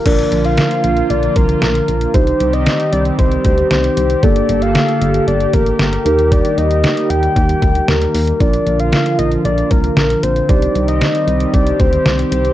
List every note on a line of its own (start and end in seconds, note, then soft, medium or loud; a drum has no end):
0.06 0.24 A#1 loud
0.06 2.12 D3 medium
0.06 2.12 F3 medium
0.06 2.12 A#3 medium
0.06 2.10 D4 medium
0.06 2.10 F4 medium
0.06 2.12 F4 loud
0.06 2.10 A#4 medium
0.06 0.47 D5 loud
0.06 kick loud
0.06 closed hi-hat medium
0.06 crash loud
0.19 closed hi-hat medium
0.32 0.59 A#1 loud
0.32 closed hi-hat medium
0.45 0.57 F5 loud
0.45 closed hi-hat medium
0.57 1.12 F5 loud
0.57 snare loud
0.57 closed hi-hat medium
0.71 closed hi-hat medium
0.84 1.02 A#1 loud
0.84 closed hi-hat medium
0.97 closed hi-hat medium
1.10 1.28 A#1 loud
1.10 1.38 D5 loud
1.10 closed hi-hat medium
1.23 closed hi-hat medium
1.36 1.54 C2 loud
1.36 1.62 A#4 medium
1.36 kick medium
1.36 closed hi-hat medium
1.49 closed hi-hat soft
1.62 1.80 A#1 loud
1.62 2.16 A#4 medium
1.62 snare loud
1.62 closed hi-hat medium
1.75 closed hi-hat medium
1.88 2.07 A#1 loud
1.88 closed hi-hat medium
2.01 closed hi-hat medium
2.14 2.33 C2 loud
2.14 4.21 D#3 medium
2.14 4.21 G3 medium
2.14 4.21 C4 medium
2.14 4.19 D#4 medium
2.14 4.19 G4 medium
2.14 8.36 G4 loud
2.14 4.19 C5 medium
2.14 2.55 C5 loud
2.14 kick loud
2.14 closed hi-hat medium
2.27 closed hi-hat medium
2.40 2.68 C2 loud
2.40 closed hi-hat medium
2.53 2.92 D#5 loud
2.53 closed hi-hat medium
2.66 snare loud
2.66 closed hi-hat medium
2.80 closed hi-hat medium
2.93 3.11 C2 loud
2.93 3.04 D5 loud
2.93 closed hi-hat medium
3.05 closed hi-hat medium
3.19 3.37 C2 loud
3.19 3.67 C5 loud
3.19 kick medium
3.19 closed hi-hat medium
3.32 closed hi-hat medium
3.45 3.63 D2 loud
3.45 kick medium
3.45 closed hi-hat medium
3.58 closed hi-hat soft
3.71 3.89 C2 loud
3.71 4.25 C5 loud
3.71 snare loud
3.71 closed hi-hat medium
3.84 closed hi-hat medium
3.97 4.15 C2 loud
3.97 closed hi-hat medium
4.10 closed hi-hat medium
4.23 4.41 G1 loud
4.23 6.04 D3 medium
4.23 6.02 A#3 medium
4.23 10.45 A#3 medium
4.23 6.02 G4 medium
4.23 6.04 A4 medium
4.23 6.02 A4 medium
4.23 4.64 D5 loud
4.23 kick loud
4.23 closed hi-hat medium
4.36 closed hi-hat medium
4.49 4.76 G1 loud
4.49 closed hi-hat medium
4.62 4.75 F5 medium
4.62 closed hi-hat medium
4.75 5.24 F5 loud
4.75 snare loud
4.75 closed hi-hat medium
4.88 closed hi-hat medium
5.01 5.19 G1 loud
5.01 closed hi-hat medium
5.14 closed hi-hat medium
5.27 5.46 G1 loud
5.27 5.55 D5 loud
5.27 closed hi-hat medium
5.40 closed hi-hat medium
5.53 5.72 A1 medium
5.53 5.79 A#4 loud
5.53 kick medium
5.53 closed hi-hat medium
5.66 closed hi-hat soft
5.79 5.98 G1 loud
5.79 6.33 A#4 loud
5.79 snare loud
5.79 closed hi-hat medium
5.93 closed hi-hat medium
6.05 6.42 D#2 medium
6.05 8.38 D#3 medium
6.05 8.38 G3 medium
6.05 8.10 D#4 medium
6.05 8.10 G4 medium
6.05 8.10 A#4 medium
6.05 closed hi-hat medium
6.19 closed hi-hat medium
6.32 6.59 D5 loud
6.32 kick loud
6.32 closed hi-hat medium
6.45 closed hi-hat medium
6.58 6.85 D#2 loud
6.58 7.11 D#5 loud
6.58 closed hi-hat medium
6.71 closed hi-hat medium
6.84 snare loud
6.84 closed hi-hat medium
6.97 closed hi-hat medium
7.10 7.28 D#2 medium
7.10 7.90 G5 loud
7.10 closed hi-hat medium
7.23 closed hi-hat medium
7.36 7.54 D#2 loud
7.36 kick loud
7.36 closed hi-hat medium
7.49 closed hi-hat medium
7.62 7.81 D2 medium
7.62 kick medium
7.62 closed hi-hat medium
7.75 closed hi-hat soft
7.88 8.06 D#2 loud
7.88 8.42 A#4 loud
7.88 snare loud
7.88 closed hi-hat medium
8.02 closed hi-hat medium
8.14 8.33 D#2 loud
8.14 open hi-hat medium
8.27 closed hi-hat medium
8.40 8.59 A#1 loud
8.40 10.47 D3 medium
8.40 10.47 F3 medium
8.40 10.45 D4 medium
8.40 10.47 F4 medium
8.40 10.45 F4 medium
8.40 10.45 A#4 medium
8.40 8.81 D5 loud
8.40 kick loud
8.40 closed hi-hat medium
8.54 closed hi-hat medium
8.67 8.94 A#1 loud
8.67 closed hi-hat medium
8.80 8.92 F5 loud
8.80 closed hi-hat medium
8.92 9.17 F5 loud
8.92 snare loud
8.92 closed hi-hat medium
9.06 closed hi-hat medium
9.19 9.37 A#1 loud
9.19 9.31 D#5 loud
9.19 closed hi-hat medium
9.32 closed hi-hat medium
9.45 9.63 A#1 loud
9.45 9.73 D5 loud
9.45 closed hi-hat medium
9.58 closed hi-hat medium
9.71 9.89 C2 loud
9.71 9.97 A#4 loud
9.71 kick medium
9.71 closed hi-hat medium
9.84 closed hi-hat soft
9.97 10.15 A#1 loud
9.97 10.25 A#4 loud
9.97 snare loud
9.97 closed hi-hat medium
10.10 closed hi-hat medium
10.23 10.41 A#1 loud
10.23 10.51 C5 loud
10.23 closed hi-hat medium
10.36 closed hi-hat medium
10.49 10.67 C2 loud
10.49 12.53 D#3 medium
10.49 12.53 G3 medium
10.49 12.53 C4 medium
10.49 12.53 D#4 medium
10.49 12.53 G4 medium
10.49 12.53 C5 medium
10.49 10.88 D5 loud
10.49 kick loud
10.49 closed hi-hat medium
10.62 closed hi-hat medium
10.75 11.03 C2 loud
10.75 closed hi-hat medium
10.88 11.00 D#5 loud
10.88 closed hi-hat medium
11.01 11.55 D#5 loud
11.01 snare loud
11.01 closed hi-hat medium
11.15 closed hi-hat medium
11.27 11.46 C2 loud
11.27 closed hi-hat medium
11.40 closed hi-hat medium
11.54 11.72 C2 loud
11.54 11.81 D5 loud
11.54 kick medium
11.54 closed hi-hat medium
11.67 closed hi-hat medium
11.80 11.98 D2 loud
11.80 12.31 C5 loud
11.80 kick medium
11.80 closed hi-hat medium
11.93 closed hi-hat soft
12.06 12.24 C2 loud
12.06 snare loud
12.06 closed hi-hat medium
12.19 closed hi-hat medium
12.32 12.50 C2 loud
12.32 12.53 C5 loud
12.32 closed hi-hat medium
12.45 closed hi-hat medium